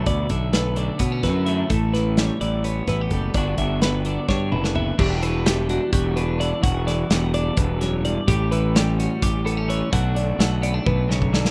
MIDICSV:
0, 0, Header, 1, 5, 480
1, 0, Start_track
1, 0, Tempo, 469851
1, 61, Time_signature, 7, 3, 24, 8
1, 11758, End_track
2, 0, Start_track
2, 0, Title_t, "Clean electric guitar"
2, 0, Program_c, 0, 27
2, 70, Note_on_c, 0, 74, 93
2, 311, Note_off_c, 0, 74, 0
2, 311, Note_on_c, 0, 76, 69
2, 543, Note_off_c, 0, 76, 0
2, 547, Note_on_c, 0, 71, 75
2, 790, Note_off_c, 0, 71, 0
2, 790, Note_on_c, 0, 74, 68
2, 1027, Note_off_c, 0, 74, 0
2, 1027, Note_on_c, 0, 73, 73
2, 1260, Note_off_c, 0, 73, 0
2, 1264, Note_on_c, 0, 71, 71
2, 1489, Note_off_c, 0, 71, 0
2, 1493, Note_on_c, 0, 76, 68
2, 1734, Note_off_c, 0, 76, 0
2, 1735, Note_on_c, 0, 69, 85
2, 1975, Note_off_c, 0, 69, 0
2, 1977, Note_on_c, 0, 71, 64
2, 2224, Note_off_c, 0, 71, 0
2, 2224, Note_on_c, 0, 73, 77
2, 2457, Note_off_c, 0, 73, 0
2, 2461, Note_on_c, 0, 74, 70
2, 2704, Note_off_c, 0, 74, 0
2, 2704, Note_on_c, 0, 73, 74
2, 2940, Note_off_c, 0, 73, 0
2, 2944, Note_on_c, 0, 71, 68
2, 3183, Note_off_c, 0, 71, 0
2, 3183, Note_on_c, 0, 69, 66
2, 3419, Note_off_c, 0, 69, 0
2, 3421, Note_on_c, 0, 74, 87
2, 3656, Note_off_c, 0, 74, 0
2, 3660, Note_on_c, 0, 76, 67
2, 3897, Note_off_c, 0, 76, 0
2, 3901, Note_on_c, 0, 71, 76
2, 4144, Note_off_c, 0, 71, 0
2, 4144, Note_on_c, 0, 74, 69
2, 4377, Note_off_c, 0, 74, 0
2, 4381, Note_on_c, 0, 73, 66
2, 4630, Note_off_c, 0, 73, 0
2, 4630, Note_on_c, 0, 71, 68
2, 4856, Note_off_c, 0, 71, 0
2, 4860, Note_on_c, 0, 76, 65
2, 5098, Note_off_c, 0, 76, 0
2, 5104, Note_on_c, 0, 67, 93
2, 5343, Note_off_c, 0, 67, 0
2, 5343, Note_on_c, 0, 71, 71
2, 5580, Note_off_c, 0, 71, 0
2, 5580, Note_on_c, 0, 67, 79
2, 5816, Note_off_c, 0, 67, 0
2, 5821, Note_on_c, 0, 66, 71
2, 6053, Note_off_c, 0, 66, 0
2, 6057, Note_on_c, 0, 67, 71
2, 6295, Note_on_c, 0, 71, 69
2, 6297, Note_off_c, 0, 67, 0
2, 6536, Note_off_c, 0, 71, 0
2, 6540, Note_on_c, 0, 74, 69
2, 6773, Note_off_c, 0, 74, 0
2, 6777, Note_on_c, 0, 78, 96
2, 7016, Note_off_c, 0, 78, 0
2, 7020, Note_on_c, 0, 74, 72
2, 7259, Note_off_c, 0, 74, 0
2, 7259, Note_on_c, 0, 78, 78
2, 7497, Note_off_c, 0, 78, 0
2, 7501, Note_on_c, 0, 74, 79
2, 7734, Note_off_c, 0, 74, 0
2, 7734, Note_on_c, 0, 71, 82
2, 7976, Note_off_c, 0, 71, 0
2, 7976, Note_on_c, 0, 73, 72
2, 8217, Note_off_c, 0, 73, 0
2, 8223, Note_on_c, 0, 74, 75
2, 8454, Note_on_c, 0, 67, 90
2, 8460, Note_off_c, 0, 74, 0
2, 8696, Note_off_c, 0, 67, 0
2, 8699, Note_on_c, 0, 71, 71
2, 8938, Note_off_c, 0, 71, 0
2, 8941, Note_on_c, 0, 67, 82
2, 9177, Note_off_c, 0, 67, 0
2, 9177, Note_on_c, 0, 66, 75
2, 9424, Note_off_c, 0, 66, 0
2, 9424, Note_on_c, 0, 67, 82
2, 9660, Note_off_c, 0, 67, 0
2, 9664, Note_on_c, 0, 69, 71
2, 9901, Note_off_c, 0, 69, 0
2, 9906, Note_on_c, 0, 73, 74
2, 10139, Note_off_c, 0, 73, 0
2, 10143, Note_on_c, 0, 78, 94
2, 10380, Note_off_c, 0, 78, 0
2, 10382, Note_on_c, 0, 74, 71
2, 10620, Note_off_c, 0, 74, 0
2, 10620, Note_on_c, 0, 78, 86
2, 10859, Note_off_c, 0, 78, 0
2, 10863, Note_on_c, 0, 74, 74
2, 11098, Note_off_c, 0, 74, 0
2, 11102, Note_on_c, 0, 71, 75
2, 11345, Note_off_c, 0, 71, 0
2, 11345, Note_on_c, 0, 73, 70
2, 11583, Note_off_c, 0, 73, 0
2, 11583, Note_on_c, 0, 74, 73
2, 11758, Note_off_c, 0, 74, 0
2, 11758, End_track
3, 0, Start_track
3, 0, Title_t, "Clean electric guitar"
3, 0, Program_c, 1, 27
3, 0, Note_on_c, 1, 50, 58
3, 0, Note_on_c, 1, 64, 58
3, 71, Note_on_c, 1, 47, 66
3, 296, Note_off_c, 1, 50, 0
3, 305, Note_off_c, 1, 47, 0
3, 309, Note_on_c, 1, 50, 56
3, 545, Note_on_c, 1, 57, 57
3, 765, Note_off_c, 1, 50, 0
3, 777, Note_on_c, 1, 50, 56
3, 1014, Note_on_c, 1, 59, 56
3, 1145, Note_off_c, 1, 59, 0
3, 1145, Note_on_c, 1, 61, 47
3, 1250, Note_off_c, 1, 64, 0
3, 1262, Note_on_c, 1, 64, 54
3, 1506, Note_off_c, 1, 57, 0
3, 1510, Note_on_c, 1, 57, 55
3, 1736, Note_off_c, 1, 50, 0
3, 1740, Note_off_c, 1, 61, 0
3, 1742, Note_on_c, 1, 45, 73
3, 1987, Note_on_c, 1, 52, 56
3, 2227, Note_off_c, 1, 57, 0
3, 2232, Note_on_c, 1, 55, 59
3, 2448, Note_off_c, 1, 52, 0
3, 2461, Note_on_c, 1, 52, 53
3, 2700, Note_on_c, 1, 59, 59
3, 2935, Note_off_c, 1, 64, 0
3, 2947, Note_on_c, 1, 64, 57
3, 3079, Note_off_c, 1, 64, 0
3, 3079, Note_on_c, 1, 67, 45
3, 3199, Note_off_c, 1, 55, 0
3, 3203, Note_on_c, 1, 55, 56
3, 3389, Note_off_c, 1, 52, 0
3, 3418, Note_off_c, 1, 45, 0
3, 3427, Note_off_c, 1, 67, 0
3, 3430, Note_on_c, 1, 50, 59
3, 3437, Note_off_c, 1, 55, 0
3, 3439, Note_off_c, 1, 59, 0
3, 3441, Note_on_c, 1, 59, 48
3, 3443, Note_on_c, 1, 62, 58
3, 3450, Note_on_c, 1, 66, 56
3, 3649, Note_off_c, 1, 50, 0
3, 3662, Note_on_c, 1, 50, 58
3, 3906, Note_off_c, 1, 59, 0
3, 3918, Note_on_c, 1, 59, 57
3, 4136, Note_off_c, 1, 50, 0
3, 4148, Note_on_c, 1, 50, 54
3, 4372, Note_off_c, 1, 62, 0
3, 4384, Note_on_c, 1, 62, 53
3, 4610, Note_off_c, 1, 66, 0
3, 4614, Note_on_c, 1, 64, 57
3, 4738, Note_off_c, 1, 64, 0
3, 4738, Note_on_c, 1, 66, 45
3, 4841, Note_off_c, 1, 59, 0
3, 4853, Note_on_c, 1, 59, 54
3, 5066, Note_off_c, 1, 59, 0
3, 5071, Note_off_c, 1, 62, 0
3, 5087, Note_on_c, 1, 40, 72
3, 5089, Note_off_c, 1, 50, 0
3, 5093, Note_on_c, 1, 52, 57
3, 5097, Note_off_c, 1, 66, 0
3, 5106, Note_on_c, 1, 55, 60
3, 5109, Note_on_c, 1, 62, 61
3, 5119, Note_on_c, 1, 66, 56
3, 5329, Note_off_c, 1, 52, 0
3, 5333, Note_on_c, 1, 52, 62
3, 5570, Note_off_c, 1, 55, 0
3, 5574, Note_on_c, 1, 55, 66
3, 5818, Note_off_c, 1, 62, 0
3, 5822, Note_on_c, 1, 62, 55
3, 6052, Note_off_c, 1, 66, 0
3, 6064, Note_on_c, 1, 66, 56
3, 6290, Note_off_c, 1, 62, 0
3, 6302, Note_on_c, 1, 62, 56
3, 6525, Note_off_c, 1, 52, 0
3, 6530, Note_on_c, 1, 52, 64
3, 6748, Note_off_c, 1, 40, 0
3, 6751, Note_off_c, 1, 62, 0
3, 6752, Note_off_c, 1, 66, 0
3, 6760, Note_on_c, 1, 40, 68
3, 6772, Note_on_c, 1, 66, 69
3, 6802, Note_off_c, 1, 52, 0
3, 7015, Note_on_c, 1, 52, 60
3, 7258, Note_off_c, 1, 55, 0
3, 7262, Note_on_c, 1, 55, 58
3, 7507, Note_on_c, 1, 62, 56
3, 7729, Note_off_c, 1, 40, 0
3, 7742, Note_on_c, 1, 40, 63
3, 7975, Note_off_c, 1, 40, 0
3, 7979, Note_on_c, 1, 42, 67
3, 8218, Note_off_c, 1, 42, 0
3, 8228, Note_on_c, 1, 43, 65
3, 8426, Note_off_c, 1, 66, 0
3, 8428, Note_off_c, 1, 52, 0
3, 8433, Note_off_c, 1, 62, 0
3, 8462, Note_off_c, 1, 43, 0
3, 8466, Note_on_c, 1, 45, 67
3, 8471, Note_on_c, 1, 67, 67
3, 8711, Note_on_c, 1, 52, 65
3, 8940, Note_off_c, 1, 55, 0
3, 8955, Note_on_c, 1, 55, 66
3, 9193, Note_on_c, 1, 61, 56
3, 9414, Note_off_c, 1, 67, 0
3, 9426, Note_on_c, 1, 67, 64
3, 9650, Note_off_c, 1, 61, 0
3, 9654, Note_on_c, 1, 59, 56
3, 9778, Note_off_c, 1, 59, 0
3, 9778, Note_on_c, 1, 61, 49
3, 9880, Note_off_c, 1, 52, 0
3, 9893, Note_on_c, 1, 52, 61
3, 10106, Note_off_c, 1, 52, 0
3, 10113, Note_off_c, 1, 67, 0
3, 10130, Note_off_c, 1, 45, 0
3, 10134, Note_on_c, 1, 47, 71
3, 10138, Note_off_c, 1, 61, 0
3, 10139, Note_on_c, 1, 50, 50
3, 10143, Note_off_c, 1, 55, 0
3, 10147, Note_on_c, 1, 57, 61
3, 10156, Note_on_c, 1, 62, 55
3, 10164, Note_on_c, 1, 66, 65
3, 10352, Note_off_c, 1, 50, 0
3, 10365, Note_on_c, 1, 50, 63
3, 10376, Note_off_c, 1, 47, 0
3, 10603, Note_off_c, 1, 57, 0
3, 10615, Note_on_c, 1, 57, 62
3, 10845, Note_off_c, 1, 62, 0
3, 10849, Note_on_c, 1, 59, 60
3, 10973, Note_off_c, 1, 59, 0
3, 10973, Note_on_c, 1, 62, 51
3, 11092, Note_on_c, 1, 47, 61
3, 11326, Note_off_c, 1, 47, 0
3, 11330, Note_on_c, 1, 49, 64
3, 11560, Note_off_c, 1, 50, 0
3, 11572, Note_on_c, 1, 50, 62
3, 11573, Note_off_c, 1, 49, 0
3, 11758, Note_off_c, 1, 50, 0
3, 11758, Note_off_c, 1, 57, 0
3, 11758, Note_off_c, 1, 62, 0
3, 11758, Note_off_c, 1, 66, 0
3, 11758, End_track
4, 0, Start_track
4, 0, Title_t, "Fingered electric bass"
4, 0, Program_c, 2, 33
4, 70, Note_on_c, 2, 38, 81
4, 267, Note_off_c, 2, 38, 0
4, 306, Note_on_c, 2, 35, 81
4, 906, Note_off_c, 2, 35, 0
4, 1023, Note_on_c, 2, 47, 77
4, 1261, Note_on_c, 2, 42, 70
4, 1276, Note_off_c, 2, 47, 0
4, 1661, Note_off_c, 2, 42, 0
4, 1742, Note_on_c, 2, 33, 86
4, 2343, Note_off_c, 2, 33, 0
4, 2462, Note_on_c, 2, 33, 78
4, 2862, Note_off_c, 2, 33, 0
4, 2939, Note_on_c, 2, 33, 77
4, 3139, Note_off_c, 2, 33, 0
4, 3174, Note_on_c, 2, 30, 81
4, 3376, Note_off_c, 2, 30, 0
4, 3418, Note_on_c, 2, 31, 84
4, 3618, Note_off_c, 2, 31, 0
4, 3661, Note_on_c, 2, 31, 78
4, 4262, Note_off_c, 2, 31, 0
4, 4381, Note_on_c, 2, 43, 77
4, 4616, Note_on_c, 2, 30, 71
4, 4631, Note_off_c, 2, 43, 0
4, 5018, Note_off_c, 2, 30, 0
4, 5099, Note_on_c, 2, 28, 99
4, 5903, Note_off_c, 2, 28, 0
4, 6056, Note_on_c, 2, 28, 88
4, 6660, Note_off_c, 2, 28, 0
4, 6776, Note_on_c, 2, 28, 95
4, 7179, Note_off_c, 2, 28, 0
4, 7257, Note_on_c, 2, 28, 82
4, 7659, Note_off_c, 2, 28, 0
4, 7741, Note_on_c, 2, 28, 81
4, 8343, Note_off_c, 2, 28, 0
4, 8457, Note_on_c, 2, 33, 101
4, 9262, Note_off_c, 2, 33, 0
4, 9427, Note_on_c, 2, 33, 88
4, 10026, Note_off_c, 2, 33, 0
4, 10144, Note_on_c, 2, 35, 87
4, 10543, Note_off_c, 2, 35, 0
4, 10611, Note_on_c, 2, 35, 85
4, 11016, Note_off_c, 2, 35, 0
4, 11102, Note_on_c, 2, 35, 82
4, 11703, Note_off_c, 2, 35, 0
4, 11758, End_track
5, 0, Start_track
5, 0, Title_t, "Drums"
5, 63, Note_on_c, 9, 42, 70
5, 66, Note_on_c, 9, 36, 93
5, 165, Note_off_c, 9, 42, 0
5, 168, Note_off_c, 9, 36, 0
5, 300, Note_on_c, 9, 42, 58
5, 305, Note_on_c, 9, 36, 61
5, 403, Note_off_c, 9, 42, 0
5, 407, Note_off_c, 9, 36, 0
5, 542, Note_on_c, 9, 42, 79
5, 546, Note_on_c, 9, 38, 88
5, 645, Note_off_c, 9, 42, 0
5, 649, Note_off_c, 9, 38, 0
5, 779, Note_on_c, 9, 42, 53
5, 881, Note_off_c, 9, 42, 0
5, 1012, Note_on_c, 9, 42, 83
5, 1020, Note_on_c, 9, 36, 94
5, 1114, Note_off_c, 9, 42, 0
5, 1122, Note_off_c, 9, 36, 0
5, 1260, Note_on_c, 9, 36, 59
5, 1260, Note_on_c, 9, 42, 53
5, 1264, Note_on_c, 9, 38, 30
5, 1362, Note_off_c, 9, 36, 0
5, 1362, Note_off_c, 9, 42, 0
5, 1366, Note_off_c, 9, 38, 0
5, 1496, Note_on_c, 9, 42, 62
5, 1598, Note_off_c, 9, 42, 0
5, 1735, Note_on_c, 9, 42, 77
5, 1738, Note_on_c, 9, 36, 92
5, 1837, Note_off_c, 9, 42, 0
5, 1841, Note_off_c, 9, 36, 0
5, 1985, Note_on_c, 9, 42, 58
5, 1989, Note_on_c, 9, 38, 31
5, 2088, Note_off_c, 9, 42, 0
5, 2092, Note_off_c, 9, 38, 0
5, 2218, Note_on_c, 9, 42, 72
5, 2222, Note_on_c, 9, 38, 91
5, 2321, Note_off_c, 9, 42, 0
5, 2325, Note_off_c, 9, 38, 0
5, 2463, Note_on_c, 9, 42, 54
5, 2565, Note_off_c, 9, 42, 0
5, 2699, Note_on_c, 9, 42, 76
5, 2801, Note_off_c, 9, 42, 0
5, 2936, Note_on_c, 9, 42, 49
5, 2938, Note_on_c, 9, 36, 60
5, 2940, Note_on_c, 9, 38, 26
5, 3038, Note_off_c, 9, 42, 0
5, 3040, Note_off_c, 9, 36, 0
5, 3043, Note_off_c, 9, 38, 0
5, 3172, Note_on_c, 9, 42, 52
5, 3176, Note_on_c, 9, 36, 64
5, 3274, Note_off_c, 9, 42, 0
5, 3278, Note_off_c, 9, 36, 0
5, 3410, Note_on_c, 9, 42, 72
5, 3417, Note_on_c, 9, 36, 94
5, 3512, Note_off_c, 9, 42, 0
5, 3519, Note_off_c, 9, 36, 0
5, 3654, Note_on_c, 9, 42, 53
5, 3658, Note_on_c, 9, 36, 60
5, 3756, Note_off_c, 9, 42, 0
5, 3760, Note_off_c, 9, 36, 0
5, 3898, Note_on_c, 9, 42, 67
5, 3902, Note_on_c, 9, 38, 96
5, 4000, Note_off_c, 9, 42, 0
5, 4004, Note_off_c, 9, 38, 0
5, 4135, Note_on_c, 9, 42, 53
5, 4237, Note_off_c, 9, 42, 0
5, 4378, Note_on_c, 9, 36, 89
5, 4384, Note_on_c, 9, 38, 50
5, 4480, Note_off_c, 9, 36, 0
5, 4486, Note_off_c, 9, 38, 0
5, 4619, Note_on_c, 9, 47, 61
5, 4721, Note_off_c, 9, 47, 0
5, 4744, Note_on_c, 9, 38, 68
5, 4846, Note_off_c, 9, 38, 0
5, 4857, Note_on_c, 9, 43, 79
5, 4959, Note_off_c, 9, 43, 0
5, 5097, Note_on_c, 9, 36, 103
5, 5098, Note_on_c, 9, 49, 109
5, 5199, Note_off_c, 9, 36, 0
5, 5201, Note_off_c, 9, 49, 0
5, 5339, Note_on_c, 9, 42, 64
5, 5441, Note_off_c, 9, 42, 0
5, 5579, Note_on_c, 9, 42, 92
5, 5583, Note_on_c, 9, 38, 107
5, 5681, Note_off_c, 9, 42, 0
5, 5685, Note_off_c, 9, 38, 0
5, 5815, Note_on_c, 9, 42, 62
5, 5917, Note_off_c, 9, 42, 0
5, 6055, Note_on_c, 9, 36, 96
5, 6055, Note_on_c, 9, 42, 91
5, 6157, Note_off_c, 9, 42, 0
5, 6158, Note_off_c, 9, 36, 0
5, 6300, Note_on_c, 9, 42, 59
5, 6402, Note_off_c, 9, 42, 0
5, 6545, Note_on_c, 9, 42, 68
5, 6647, Note_off_c, 9, 42, 0
5, 6779, Note_on_c, 9, 36, 109
5, 6781, Note_on_c, 9, 42, 88
5, 6881, Note_off_c, 9, 36, 0
5, 6883, Note_off_c, 9, 42, 0
5, 7025, Note_on_c, 9, 42, 64
5, 7029, Note_on_c, 9, 38, 35
5, 7127, Note_off_c, 9, 42, 0
5, 7131, Note_off_c, 9, 38, 0
5, 7257, Note_on_c, 9, 42, 78
5, 7261, Note_on_c, 9, 38, 106
5, 7359, Note_off_c, 9, 42, 0
5, 7363, Note_off_c, 9, 38, 0
5, 7497, Note_on_c, 9, 42, 58
5, 7599, Note_off_c, 9, 42, 0
5, 7731, Note_on_c, 9, 42, 86
5, 7737, Note_on_c, 9, 36, 107
5, 7833, Note_off_c, 9, 42, 0
5, 7839, Note_off_c, 9, 36, 0
5, 7980, Note_on_c, 9, 42, 60
5, 7984, Note_on_c, 9, 38, 30
5, 8082, Note_off_c, 9, 42, 0
5, 8086, Note_off_c, 9, 38, 0
5, 8222, Note_on_c, 9, 42, 69
5, 8325, Note_off_c, 9, 42, 0
5, 8459, Note_on_c, 9, 36, 105
5, 8459, Note_on_c, 9, 42, 91
5, 8561, Note_off_c, 9, 36, 0
5, 8561, Note_off_c, 9, 42, 0
5, 8704, Note_on_c, 9, 42, 63
5, 8806, Note_off_c, 9, 42, 0
5, 8946, Note_on_c, 9, 42, 88
5, 8950, Note_on_c, 9, 38, 111
5, 9048, Note_off_c, 9, 42, 0
5, 9052, Note_off_c, 9, 38, 0
5, 9191, Note_on_c, 9, 42, 67
5, 9293, Note_off_c, 9, 42, 0
5, 9423, Note_on_c, 9, 36, 101
5, 9428, Note_on_c, 9, 42, 86
5, 9525, Note_off_c, 9, 36, 0
5, 9530, Note_off_c, 9, 42, 0
5, 9675, Note_on_c, 9, 42, 63
5, 9777, Note_off_c, 9, 42, 0
5, 9908, Note_on_c, 9, 42, 68
5, 10010, Note_off_c, 9, 42, 0
5, 10142, Note_on_c, 9, 36, 104
5, 10146, Note_on_c, 9, 42, 88
5, 10244, Note_off_c, 9, 36, 0
5, 10248, Note_off_c, 9, 42, 0
5, 10384, Note_on_c, 9, 42, 61
5, 10486, Note_off_c, 9, 42, 0
5, 10625, Note_on_c, 9, 42, 89
5, 10630, Note_on_c, 9, 38, 105
5, 10728, Note_off_c, 9, 42, 0
5, 10732, Note_off_c, 9, 38, 0
5, 10862, Note_on_c, 9, 42, 62
5, 10964, Note_off_c, 9, 42, 0
5, 11099, Note_on_c, 9, 36, 102
5, 11101, Note_on_c, 9, 48, 60
5, 11201, Note_off_c, 9, 36, 0
5, 11203, Note_off_c, 9, 48, 0
5, 11348, Note_on_c, 9, 38, 64
5, 11450, Note_off_c, 9, 38, 0
5, 11460, Note_on_c, 9, 36, 71
5, 11562, Note_off_c, 9, 36, 0
5, 11584, Note_on_c, 9, 38, 92
5, 11686, Note_off_c, 9, 38, 0
5, 11700, Note_on_c, 9, 38, 87
5, 11758, Note_off_c, 9, 38, 0
5, 11758, End_track
0, 0, End_of_file